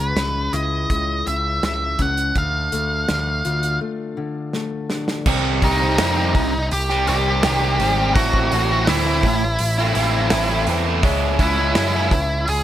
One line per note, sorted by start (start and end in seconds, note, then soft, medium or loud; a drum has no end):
0.00 0.12 C#2 medium
0.00 1.26 C#3 medium
0.00 0.90 G#3 medium
0.00 0.55 B4 medium
0.16 0.48 C#2 medium
0.16 1.98 C#4 medium
0.16 snare loud
0.16 closed hi-hat medium
0.53 0.85 C#2 medium
0.53 2.36 E4 medium
0.53 1.27 D#5 medium
0.53 closed hi-hat medium
0.90 1.22 C#2 medium
0.90 1.62 G#3 medium
0.90 kick medium
0.90 closed hi-hat medium
1.27 1.59 C#2 medium
1.27 2.35 C#3 medium
1.27 1.64 E5 medium
1.27 closed hi-hat medium
1.63 1.95 C#2 medium
1.63 2.36 G#3 medium
1.63 2.01 E5 medium
1.63 snare loud
1.63 closed hi-hat medium
1.99 2.31 C#2 medium
1.99 2.36 C#4 medium
1.99 2.38 F#5 medium
1.99 kick medium
1.99 snare soft
1.99 closed hi-hat medium
2.17 closed hi-hat medium
2.35 2.68 D2 medium
2.35 4.16 D3 medium
2.35 3.79 F5 medium
2.35 kick medium
2.35 closed hi-hat medium
2.72 3.05 D2 medium
2.72 3.80 A3 medium
2.72 closed hi-hat medium
3.09 3.41 D2 medium
3.09 4.89 D4 medium
3.09 snare loud
3.09 closed hi-hat medium
3.45 3.77 D2 medium
3.45 5.27 F4 medium
3.45 closed hi-hat medium
3.63 closed hi-hat medium
3.81 4.52 A3 medium
4.17 5.26 D3 medium
4.53 5.26 A3 medium
4.53 snare medium
4.90 5.27 D4 medium
4.90 snare medium
5.08 snare medium
5.26 5.61 C2 medium
5.26 5.97 C3 loud
5.26 5.61 D#3 medium
5.26 5.62 G3 medium
5.26 5.63 C4 loud
5.26 5.63 G4 loud
5.26 kick loud
5.26 crash loud
5.62 5.97 C2 medium
5.62 5.98 D#3 medium
5.62 5.82 G3 medium
5.62 5.82 C4 medium
5.62 6.68 D#4 medium
5.62 5.80 G4 medium
5.62 6.68 D#5 medium
5.62 kick loud
5.62 open hi-hat medium
5.81 5.99 G3 medium
5.81 6.00 C4 medium
5.81 6.00 G4 medium
5.98 6.33 F2 medium
5.98 6.53 C3 loud
5.98 6.34 D#3 loud
5.98 6.17 G3 medium
5.98 6.17 C4 loud
5.98 6.15 G4 loud
5.98 snare loud
5.98 open hi-hat medium
6.17 6.34 G3 medium
6.17 6.36 C4 medium
6.17 6.35 G4 medium
6.35 6.69 C2 medium
6.35 muted overdriven electric guitar stroke soft
6.35 kick medium
6.35 open hi-hat medium
6.71 7.06 C2 medium
6.71 7.06 G4 medium
6.71 7.06 G5 medium
6.71 open hi-hat medium
6.89 7.07 G3 medium
6.89 7.07 C4 medium
6.89 7.08 G4 medium
6.89 snare soft
7.07 7.42 C2 medium
7.07 7.43 D#3 medium
7.07 7.44 G3 medium
7.07 7.44 C4 medium
7.07 8.12 G4 medium
7.07 7.44 G4 medium
7.07 8.14 G5 loud
7.07 open hi-hat medium
7.43 7.78 C2 loud
7.43 7.98 C3 medium
7.43 7.79 D#3 loud
7.43 7.62 G3 loud
7.43 7.62 C4 loud
7.43 7.61 G4 loud
7.43 snare loud
7.43 open hi-hat medium
7.62 7.80 G3 medium
7.62 7.80 C4 medium
7.62 7.81 G4 medium
7.79 8.14 G#1 loud
7.79 8.14 D#3 medium
7.79 7.99 G3 medium
7.79 7.98 C4 medium
7.79 7.97 G4 medium
7.79 open hi-hat medium
7.98 8.15 G3 medium
7.98 8.14 C4 medium
7.98 8.14 G4 medium
8.14 8.50 A1 loud
8.14 8.87 A2 loud
8.14 8.52 E3 loud
8.14 8.52 A3 loud
8.14 8.53 C4 loud
8.14 8.54 E4 loud
8.14 8.84 F#4 medium
8.14 8.89 F#5 loud
8.14 kick loud
8.14 open hi-hat loud
8.33 kick medium
8.52 8.86 A1 medium
8.52 8.89 E3 medium
8.52 8.72 A3 medium
8.52 8.71 C4 medium
8.52 8.71 E4 medium
8.52 open hi-hat medium
8.71 8.89 A3 medium
8.71 8.89 C4 medium
8.71 8.90 E4 medium
8.87 9.22 D2 medium
8.87 9.42 A2 loud
8.87 9.26 E3 loud
8.87 9.07 A3 loud
8.87 9.06 C4 loud
8.87 10.64 E4 medium
8.87 9.06 E4 loud
8.87 10.64 E5 medium
8.87 snare loud
8.87 open hi-hat loud
9.06 9.25 A3 medium
9.06 9.25 C4 medium
9.06 9.26 E4 medium
9.23 9.58 A1 medium
9.23 muted overdriven electric guitar stroke soft
9.23 kick medium
9.23 open hi-hat medium
9.59 9.94 A1 medium
9.59 open hi-hat loud
9.78 9.96 A3 medium
9.78 9.97 C4 medium
9.78 9.98 E4 medium
9.95 10.30 A1 medium
9.95 10.32 E3 medium
9.95 10.32 A3 medium
9.95 10.32 C4 loud
9.95 10.33 E4 medium
9.95 open hi-hat medium
10.30 10.65 A1 loud
10.30 10.86 A2 loud
10.30 10.67 E3 medium
10.30 10.49 A3 loud
10.30 10.49 C4 loud
10.30 10.48 E4 loud
10.30 snare loud
10.30 open hi-hat loud
10.49 10.67 A3 medium
10.49 10.68 C4 medium
10.49 10.69 E4 medium
10.67 11.01 E2 loud
10.67 11.02 E3 medium
10.67 10.87 A3 medium
10.67 10.86 C4 medium
10.67 10.86 E4 medium
10.67 open hi-hat medium
10.86 11.03 A3 medium
10.86 11.02 C4 medium
10.86 11.04 E4 medium
11.03 11.38 C#2 medium
11.03 11.38 C#3 loud
11.03 11.39 G#3 loud
11.03 11.39 C#4 loud
11.03 11.40 E4 loud
11.03 kick loud
11.03 open hi-hat medium
11.39 11.73 C#2 medium
11.39 11.74 C#3 medium
11.39 11.59 G#3 medium
11.39 11.57 C#4 medium
11.39 12.44 E4 medium
11.39 11.57 E4 medium
11.39 12.52 E5 medium
11.39 kick medium
11.39 open hi-hat medium
11.57 11.76 G#3 medium
11.57 11.76 C#4 medium
11.57 11.77 E4 medium
11.75 12.10 F#2 medium
11.75 12.11 C#3 medium
11.75 11.96 G#3 medium
11.75 11.94 C#4 loud
11.75 11.94 E4 loud
11.75 snare loud
11.75 open hi-hat medium
11.94 12.13 G#3 medium
11.94 12.12 C#4 medium
11.94 12.13 E4 medium
12.11 12.45 C#2 medium
12.11 muted overdriven electric guitar stroke soft
12.11 kick medium
12.11 open hi-hat medium
12.48 12.63 C#2 medium
12.48 12.63 G#4 medium
12.48 12.63 G#5 medium
12.48 open hi-hat medium